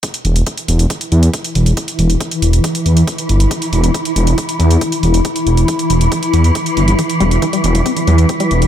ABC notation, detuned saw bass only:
X:1
M:4/4
L:1/8
Q:1/4=138
K:Em
V:1 name="Detuned saw bass" clef=bass
z E,,, z E,,, z E,, z E,,, | z E,,, z E,,, z E,, z G,,, | z E,,, z E,,, z E,, z E,,, | z E,,, z E,,, z E,, z G,,, |
z E,,, z E,,, z E,, z E,,, |]